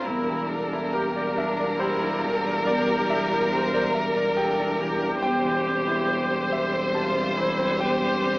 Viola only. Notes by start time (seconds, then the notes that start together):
0.06 E4
0.49 A4
0.93 G4
1.36 D4
1.79 E4
2.22 A4
2.66 G4
3.52 C5
3.94 A#4
4.36 A4
4.79 G4
6.95 F4
7.37 E4
7.79 G4